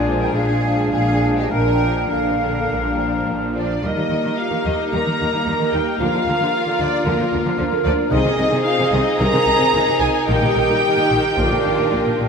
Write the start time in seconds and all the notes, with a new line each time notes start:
Already playing: A#1 A#2 G#3 D4 F4 G#4 D5
0.05 F3 G#3 D4
0.19 A#4 G5
0.33 A#1 A#2 D4 G#4 F5
0.62 F3 G#3 D4
0.92 A#1 A#2 D4 G#4 F5
1.21 F3 G#3 D4
1.33 A#2 G4
1.38 D4 D#5
1.42 F4
1.47 A#4
1.51 A#1 A#2 A#3 D4 A#4 G5
1.80 F3 A#3 D4
2.10 A#1 A#2 D3 D4 A#4 F5
2.26 C3
2.40 D3 D4
2.68 A#1 A#2
2.83 G3
2.97 F3 D4
3.26 A#1 A#2
3.40 F3
3.55 D4 D5
3.83 D#2 D#3 G3 A#3 D#4 G4 A#4 D#5
3.97 D#3 G3
4.10 D#2 D#3 A#3
4.24 D#3 G3
4.37 F4 A#4 F5
4.51 D#3
4.64 D#2 D#3 G3 D#4 G4 D#5
4.92 D#2 D#3 G3 A#3 D#4 A#4 A#5
5.06 D#3 G3
5.20 D#2 D#3 A#3
5.33 D#3 G3
5.46 D#2 D#3 G3 A#4
5.60 D#3
5.72 D#2 D#3 G3 G4 G5
5.99 D2 D3 F3 A#3 F4 F5
6.14 D3 F3
6.26 D2 D3 A#3
6.40 D3 F3
6.53 A#4
6.67 D3
6.80 D2 D3 F3 D4 D5
7.06 D2 D3 F3 A#3 A#4
7.19 D3 F3
7.32 D2 D3 A#3
7.46 D3 F3
7.59 D2 D3 F3 A#4
7.72 D3
7.85 D2 D3 F3 D4 F4 D5
8.11 C2 C3 D#3 C4 D#4 G#4 D#5
8.25 C3 D#3
8.38 C2 C3 C4
8.51 C3 D#3
8.65 F4 D#5 F5
8.78 C3
8.92 C2 C3 D#3 D#4 G#4 D#5
9.19 C2 C3 D#3 C4 A#4 A#5
9.34 C3 D#3
9.47 C2 C3
9.60 C3 D#3
9.74 C2 C3 D#3
9.87 C3
10.01 C2 C3 D#3 G#4 G#5
10.28 A#1 A#2 D#3 G3 A#3 G4 A#4 G5
10.43 A#2 D#3
10.56 A#1 A#2 D#3 D#4
10.70 A#2 D#3
10.83 D#3 D#5
10.97 A#2
11.11 A#1 A#2
11.37 A#1 A#2 D3 F3 A#3 D4 F4 D5
11.52 A#2
11.65 A#1 A#2 D#3 A#3
11.79 A#2
11.92 A#1 A#2 A#3 D5
12.07 A#2
12.20 A#1 A#2 F4